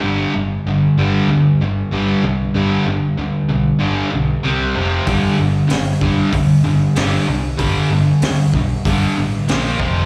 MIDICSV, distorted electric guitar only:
0, 0, Header, 1, 2, 480
1, 0, Start_track
1, 0, Tempo, 628931
1, 38, Time_signature, 4, 2, 24, 8
1, 7674, End_track
2, 0, Start_track
2, 0, Title_t, "Distorted electric guitar"
2, 0, Program_c, 0, 30
2, 4, Note_on_c, 0, 43, 87
2, 9, Note_on_c, 0, 50, 102
2, 14, Note_on_c, 0, 55, 92
2, 247, Note_off_c, 0, 43, 0
2, 249, Note_off_c, 0, 50, 0
2, 252, Note_off_c, 0, 55, 0
2, 257, Note_on_c, 0, 43, 75
2, 258, Note_on_c, 0, 50, 84
2, 484, Note_off_c, 0, 43, 0
2, 484, Note_off_c, 0, 50, 0
2, 509, Note_on_c, 0, 43, 86
2, 511, Note_on_c, 0, 50, 93
2, 729, Note_off_c, 0, 43, 0
2, 730, Note_off_c, 0, 50, 0
2, 746, Note_on_c, 0, 43, 78
2, 751, Note_on_c, 0, 50, 83
2, 754, Note_on_c, 0, 55, 90
2, 978, Note_off_c, 0, 43, 0
2, 980, Note_off_c, 0, 50, 0
2, 982, Note_off_c, 0, 55, 0
2, 995, Note_on_c, 0, 43, 76
2, 995, Note_on_c, 0, 50, 71
2, 1213, Note_off_c, 0, 43, 0
2, 1213, Note_off_c, 0, 50, 0
2, 1228, Note_on_c, 0, 43, 66
2, 1238, Note_on_c, 0, 50, 74
2, 1450, Note_off_c, 0, 43, 0
2, 1454, Note_off_c, 0, 50, 0
2, 1461, Note_on_c, 0, 43, 84
2, 1465, Note_on_c, 0, 50, 95
2, 1473, Note_on_c, 0, 55, 102
2, 1696, Note_off_c, 0, 43, 0
2, 1698, Note_off_c, 0, 50, 0
2, 1701, Note_off_c, 0, 55, 0
2, 1709, Note_on_c, 0, 43, 75
2, 1715, Note_on_c, 0, 50, 68
2, 1930, Note_off_c, 0, 43, 0
2, 1933, Note_off_c, 0, 50, 0
2, 1942, Note_on_c, 0, 43, 95
2, 1945, Note_on_c, 0, 50, 100
2, 1951, Note_on_c, 0, 55, 96
2, 2176, Note_off_c, 0, 43, 0
2, 2178, Note_off_c, 0, 50, 0
2, 2181, Note_off_c, 0, 55, 0
2, 2187, Note_on_c, 0, 43, 74
2, 2189, Note_on_c, 0, 50, 75
2, 2409, Note_off_c, 0, 43, 0
2, 2410, Note_off_c, 0, 50, 0
2, 2425, Note_on_c, 0, 43, 77
2, 2434, Note_on_c, 0, 50, 85
2, 2649, Note_off_c, 0, 43, 0
2, 2653, Note_off_c, 0, 50, 0
2, 2665, Note_on_c, 0, 43, 63
2, 2669, Note_on_c, 0, 50, 66
2, 2886, Note_off_c, 0, 43, 0
2, 2891, Note_off_c, 0, 50, 0
2, 2895, Note_on_c, 0, 43, 83
2, 2901, Note_on_c, 0, 55, 87
2, 2902, Note_on_c, 0, 50, 78
2, 3129, Note_off_c, 0, 43, 0
2, 3132, Note_off_c, 0, 50, 0
2, 3136, Note_off_c, 0, 55, 0
2, 3138, Note_on_c, 0, 43, 66
2, 3142, Note_on_c, 0, 50, 66
2, 3365, Note_off_c, 0, 43, 0
2, 3367, Note_off_c, 0, 50, 0
2, 3384, Note_on_c, 0, 48, 76
2, 3385, Note_on_c, 0, 55, 91
2, 3396, Note_on_c, 0, 60, 92
2, 3618, Note_off_c, 0, 48, 0
2, 3619, Note_off_c, 0, 55, 0
2, 3624, Note_off_c, 0, 60, 0
2, 3628, Note_on_c, 0, 41, 87
2, 3635, Note_on_c, 0, 48, 88
2, 3638, Note_on_c, 0, 53, 89
2, 3860, Note_off_c, 0, 41, 0
2, 3863, Note_off_c, 0, 48, 0
2, 3865, Note_off_c, 0, 53, 0
2, 3868, Note_on_c, 0, 43, 93
2, 3874, Note_on_c, 0, 50, 95
2, 3876, Note_on_c, 0, 55, 86
2, 4100, Note_off_c, 0, 43, 0
2, 4103, Note_off_c, 0, 50, 0
2, 4104, Note_off_c, 0, 55, 0
2, 4108, Note_on_c, 0, 43, 70
2, 4113, Note_on_c, 0, 50, 81
2, 4325, Note_off_c, 0, 43, 0
2, 4333, Note_off_c, 0, 50, 0
2, 4334, Note_on_c, 0, 43, 89
2, 4341, Note_on_c, 0, 50, 85
2, 4563, Note_off_c, 0, 43, 0
2, 4567, Note_off_c, 0, 50, 0
2, 4590, Note_on_c, 0, 43, 84
2, 4592, Note_on_c, 0, 50, 88
2, 4602, Note_on_c, 0, 55, 84
2, 4821, Note_off_c, 0, 43, 0
2, 4822, Note_off_c, 0, 50, 0
2, 4827, Note_off_c, 0, 55, 0
2, 4833, Note_on_c, 0, 43, 77
2, 4835, Note_on_c, 0, 50, 72
2, 5053, Note_off_c, 0, 43, 0
2, 5054, Note_off_c, 0, 50, 0
2, 5068, Note_on_c, 0, 43, 68
2, 5068, Note_on_c, 0, 50, 73
2, 5290, Note_off_c, 0, 43, 0
2, 5290, Note_off_c, 0, 50, 0
2, 5308, Note_on_c, 0, 43, 94
2, 5312, Note_on_c, 0, 50, 92
2, 5312, Note_on_c, 0, 55, 91
2, 5540, Note_off_c, 0, 43, 0
2, 5542, Note_off_c, 0, 50, 0
2, 5542, Note_off_c, 0, 55, 0
2, 5550, Note_on_c, 0, 43, 64
2, 5560, Note_on_c, 0, 50, 68
2, 5771, Note_off_c, 0, 43, 0
2, 5777, Note_off_c, 0, 50, 0
2, 5779, Note_on_c, 0, 43, 87
2, 5787, Note_on_c, 0, 50, 96
2, 5790, Note_on_c, 0, 55, 101
2, 6016, Note_off_c, 0, 43, 0
2, 6019, Note_off_c, 0, 50, 0
2, 6021, Note_off_c, 0, 55, 0
2, 6042, Note_on_c, 0, 43, 76
2, 6047, Note_on_c, 0, 50, 87
2, 6257, Note_off_c, 0, 43, 0
2, 6260, Note_off_c, 0, 50, 0
2, 6277, Note_on_c, 0, 43, 83
2, 6284, Note_on_c, 0, 50, 84
2, 6495, Note_off_c, 0, 43, 0
2, 6498, Note_off_c, 0, 50, 0
2, 6523, Note_on_c, 0, 50, 66
2, 6527, Note_on_c, 0, 43, 61
2, 6738, Note_off_c, 0, 50, 0
2, 6739, Note_off_c, 0, 43, 0
2, 6765, Note_on_c, 0, 43, 87
2, 6769, Note_on_c, 0, 50, 91
2, 6774, Note_on_c, 0, 55, 82
2, 6988, Note_off_c, 0, 43, 0
2, 6990, Note_off_c, 0, 50, 0
2, 6993, Note_off_c, 0, 55, 0
2, 7000, Note_on_c, 0, 43, 71
2, 7006, Note_on_c, 0, 50, 74
2, 7216, Note_off_c, 0, 43, 0
2, 7219, Note_off_c, 0, 50, 0
2, 7236, Note_on_c, 0, 46, 90
2, 7246, Note_on_c, 0, 58, 97
2, 7247, Note_on_c, 0, 53, 100
2, 7463, Note_off_c, 0, 46, 0
2, 7466, Note_on_c, 0, 41, 85
2, 7468, Note_off_c, 0, 53, 0
2, 7468, Note_off_c, 0, 58, 0
2, 7472, Note_on_c, 0, 48, 86
2, 7483, Note_on_c, 0, 53, 93
2, 7674, Note_off_c, 0, 41, 0
2, 7674, Note_off_c, 0, 48, 0
2, 7674, Note_off_c, 0, 53, 0
2, 7674, End_track
0, 0, End_of_file